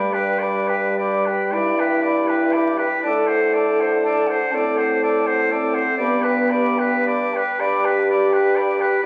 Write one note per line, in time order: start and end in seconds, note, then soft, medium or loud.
0.00 1.35 G2 soft
0.00 1.54 G3 medium
0.00 0.15 G4 soft
0.00 0.15 D5 soft
0.00 0.16 B5 soft
0.13 0.42 B4 soft
0.13 0.41 B4 soft
0.13 0.44 G5 soft
0.39 0.71 G4 soft
0.39 0.69 D5 soft
0.39 0.71 B5 soft
0.67 0.96 B4 soft
0.67 0.98 B4 soft
0.67 0.99 G5 soft
0.96 1.29 G4 soft
0.96 1.27 D5 soft
0.96 1.29 B5 soft
1.25 1.53 B4 soft
1.25 1.55 B4 soft
1.25 1.55 G5 soft
1.52 2.87 G2 soft
1.52 2.81 E4 medium
1.52 1.82 G4 soft
1.52 1.81 D5 soft
1.52 1.82 B5 soft
1.79 2.01 B4 soft
1.79 2.05 B4 soft
1.79 2.04 G5 soft
2.02 2.32 G4 soft
2.02 2.29 D5 soft
2.02 2.32 B5 soft
2.28 2.54 B4 soft
2.28 2.58 B4 soft
2.28 2.55 G5 soft
2.52 2.82 G4 soft
2.52 2.79 D5 soft
2.52 2.81 B5 soft
2.78 3.02 B4 soft
2.78 3.05 B4 soft
2.78 3.02 G5 soft
2.98 3.06 E4 soft
3.03 4.37 A2 soft
3.03 4.55 D4 medium
3.03 3.32 A4 soft
3.03 3.28 D5 soft
3.03 3.30 A5 soft
3.27 3.55 C5 soft
3.27 3.57 C5 soft
3.27 3.56 F#5 soft
3.53 3.83 A4 soft
3.53 3.82 D5 soft
3.53 3.81 A5 soft
3.79 4.05 C5 soft
3.79 4.02 F#5 soft
4.02 4.31 A4 soft
4.02 4.31 D5 soft
4.02 4.28 A5 soft
4.27 4.56 C5 soft
4.27 4.53 F#5 soft
4.51 5.82 A2 soft
4.51 5.50 C4 medium
4.51 4.80 A4 soft
4.51 4.79 D5 soft
4.51 4.79 A5 soft
4.77 5.02 C5 soft
4.77 5.02 F#5 soft
5.03 5.28 A4 soft
5.03 5.28 D5 soft
5.03 5.28 A5 soft
5.26 5.53 C5 soft
5.26 5.53 F#5 soft
5.50 6.01 C4 medium
5.50 5.76 A4 soft
5.50 5.76 D5 soft
5.50 5.75 A5 soft
5.74 5.98 C5 soft
5.74 5.97 C5 soft
5.74 5.98 F#5 soft
5.97 7.42 G2 soft
5.97 7.31 B3 medium
5.97 6.26 G4 soft
5.97 6.24 D5 soft
5.97 6.27 B5 soft
6.22 6.51 B4 soft
6.22 6.53 B4 soft
6.22 6.53 G5 soft
6.50 6.80 G4 soft
6.50 6.81 D5 soft
6.50 6.79 B5 soft
6.78 7.05 B4 soft
6.78 7.06 B4 soft
6.78 7.05 G5 soft
7.06 7.35 G4 soft
7.06 7.38 D5 soft
7.06 7.35 B5 soft
7.34 7.62 B4 soft
7.34 7.61 G5 soft
7.59 8.87 G2 medium
7.59 9.00 G4 medium
7.59 7.86 G4 soft
7.59 7.87 D5 soft
7.59 7.86 B5 soft
7.84 8.07 B4 soft
7.84 8.09 B4 soft
7.84 8.09 G5 soft
8.08 8.33 G4 soft
8.08 8.35 D5 soft
8.08 8.34 B5 soft
8.32 8.58 B4 soft
8.32 8.57 B4 soft
8.32 8.59 G5 soft
8.56 8.81 G4 soft
8.56 8.83 D5 soft
8.56 8.82 B5 soft
8.80 9.02 B4 soft
8.80 9.02 G5 soft
9.03 9.06 G4 soft
9.03 9.06 B5 soft